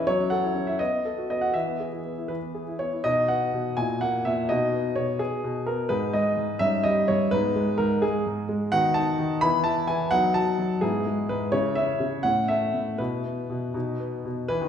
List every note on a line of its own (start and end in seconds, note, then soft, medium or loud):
0.07 0.78 F#3 medium
0.07 0.31 C#5 medium
0.20 0.39 C#4 soft
0.30 0.51 A4 soft
0.30 0.67 F#5 medium
0.43 0.63 E4 soft
0.54 0.74 C#4 soft
0.67 0.80 E4 soft
0.67 0.79 E5 medium
0.79 0.91 B3 soft
0.79 1.29 D#5 medium
0.92 1.12 B3 soft
1.05 1.25 A4 soft
1.18 1.37 F#4 soft
1.30 1.50 B3 soft
1.30 1.42 D#5 medium
1.41 1.55 F#4 soft
1.41 1.54 F#5 medium
1.54 2.28 E3 soft
1.54 2.29 E5 medium
1.68 1.88 B3 soft
1.80 2.00 G#4 soft
1.92 2.12 E4 soft
2.06 2.25 B3 soft
2.18 2.37 E4 soft
2.28 3.02 E3 soft
2.28 2.79 B4 medium
2.42 2.62 B3 soft
2.55 2.75 G#4 soft
2.68 2.88 E4 soft
2.79 3.00 B3 soft
2.79 3.04 C#5 medium
2.93 3.05 E4 soft
3.04 3.52 B2 medium
3.04 3.73 D#4 soft
3.04 3.73 F#4 soft
3.04 3.28 D#5 medium
3.28 3.75 B3 soft
3.28 3.76 F#5 medium
3.53 3.76 B2 soft
3.77 4.25 A#2 soft
3.77 4.45 E4 soft
3.77 4.45 F#4 soft
3.77 4.01 G#5 medium
4.01 4.48 A#3 soft
4.01 4.25 F#5 medium
4.25 4.49 A#2 soft
4.25 4.49 E5 medium
4.49 4.95 B2 medium
4.49 5.88 D#4 soft
4.49 5.88 F#4 soft
4.49 4.97 D#5 medium
4.73 5.19 B3 soft
4.96 5.43 B2 soft
4.96 5.20 C#5 medium
5.19 5.66 B3 soft
5.19 5.67 G#4 medium
5.44 5.90 B2 soft
5.67 5.90 B3 soft
5.67 5.90 A#4 medium
5.89 6.36 G#2 medium
5.89 6.57 D#4 soft
5.89 6.57 G#4 soft
5.89 6.13 B4 medium
6.13 6.60 G#3 soft
6.13 6.61 D#5 medium
6.37 6.60 G#2 soft
6.59 7.07 G2 medium
6.59 7.28 C#4 soft
6.59 7.28 D#4 soft
6.59 6.84 E5 loud
6.84 7.31 G3 medium
6.84 7.08 D#5 medium
7.08 7.32 G2 medium
7.08 7.32 C#5 medium
7.31 7.78 G#2 medium
7.31 8.69 B3 soft
7.31 8.69 D#4 soft
7.31 7.79 B4 medium
7.56 8.01 G#3 medium
7.78 8.25 G#2 medium
7.78 8.02 A#4 medium
8.02 8.47 G#3 medium
8.02 8.25 G#4 medium
8.26 8.72 G#2 medium
8.49 8.72 G#3 medium
8.72 9.17 D#3 medium
8.72 9.38 B3 soft
8.72 9.38 F#4 soft
8.72 8.96 F#5 loud
8.94 9.41 D#4 medium
8.94 9.41 A5 medium
9.19 9.41 D#3 medium
9.41 9.87 E3 medium
9.41 10.08 B3 soft
9.41 9.63 E4 soft
9.41 9.65 B5 loud
9.64 10.10 E4 medium
9.64 9.88 A5 medium
9.87 10.11 E3 medium
9.87 10.11 G#5 medium
10.11 10.57 F#3 medium
10.11 10.77 B3 soft
10.11 10.78 D#4 soft
10.11 10.34 F#5 loud
10.34 10.80 F#4 soft
10.34 10.81 A5 medium
10.58 10.81 F#3 medium
10.81 11.29 G#2 medium
10.81 11.48 B3 soft
10.81 11.48 E4 soft
10.81 11.28 G#4 medium
11.06 11.51 G#3 medium
11.29 11.52 G#2 medium
11.29 11.53 B4 medium
11.52 11.99 C#3 medium
11.52 11.75 C#4 soft
11.52 12.21 E4 soft
11.52 11.76 C#5 medium
11.75 12.22 C#4 soft
11.75 12.24 E5 medium
12.00 12.23 C#3 soft
12.23 12.73 A2 soft
12.23 12.95 C#4 soft
12.23 12.95 E4 soft
12.23 12.48 F#5 medium
12.48 12.98 A3 soft
12.48 12.99 E5 medium
12.74 12.98 A2 soft
12.98 13.48 B2 medium
12.98 13.23 B3 soft
12.98 13.71 E4 soft
12.98 14.25 B4 medium
13.24 13.73 B3 soft
13.50 13.73 B2 soft
13.74 14.24 B2 medium
13.74 13.98 B3 soft
13.74 14.45 D#4 soft
14.00 14.48 B3 soft
14.25 14.49 B2 soft
14.48 14.61 E3 medium
14.48 14.69 B4 medium
14.61 14.69 D#3 medium